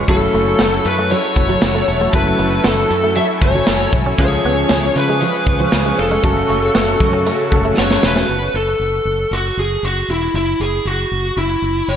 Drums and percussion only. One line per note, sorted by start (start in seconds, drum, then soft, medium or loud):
0.08 kick loud
0.08 closed hi-hat medium
0.34 closed hi-hat medium
0.59 snare medium
0.59 closed hi-hat medium
0.59 tambourine medium
0.85 closed hi-hat medium
1.10 closed hi-hat medium
1.23 closed hi-hat medium
1.36 kick medium
1.36 closed hi-hat medium
1.62 snare loud
1.62 closed hi-hat medium
1.62 tambourine medium
1.88 closed hi-hat medium
2.13 kick loud
2.13 closed hi-hat medium
2.39 closed hi-hat medium
2.52 closed hi-hat soft
2.64 snare loud
2.64 closed hi-hat medium
2.64 tambourine medium
2.90 closed hi-hat medium
3.16 closed hi-hat medium
3.41 kick medium
3.41 closed hi-hat medium
3.67 snare loud
3.67 closed hi-hat medium
3.67 tambourine medium
3.93 kick loud
3.93 closed hi-hat medium
4.18 kick loud
4.18 closed hi-hat medium
4.44 closed hi-hat medium
4.69 snare loud
4.69 closed hi-hat loud
4.69 tambourine medium
4.96 closed hi-hat medium
5.21 closed hi-hat medium
5.34 closed hi-hat medium
5.46 kick medium
5.46 closed hi-hat medium
5.72 snare loud
5.72 closed hi-hat medium
5.72 tambourine medium
5.98 closed hi-hat medium
6.23 kick loud
6.23 closed hi-hat medium
6.50 closed hi-hat medium
6.75 snare loud
6.75 closed hi-hat loud
6.75 tambourine medium
7.00 kick loud
7.00 closed hi-hat medium
7.27 closed hi-hat medium
7.52 kick medium
7.52 closed hi-hat medium
7.77 snare medium
7.91 snare medium
8.03 snare loud
8.16 snare medium